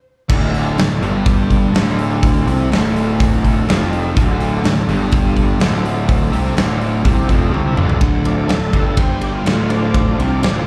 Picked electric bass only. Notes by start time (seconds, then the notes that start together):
0.29 D1
0.78 D1
1.02 G1
1.74 D1
2.46 C2
2.71 D1
3.68 F1
4.17 D1
4.64 D1
4.88 G1
5.60 D1
6.31 C2
6.55 D1
7.05 C2
7.29 F1
7.51 C2
7.75 D1
8.01 D1
8.48 D1
8.73 G1
9.46 D1
10.19 C2
10.42 D1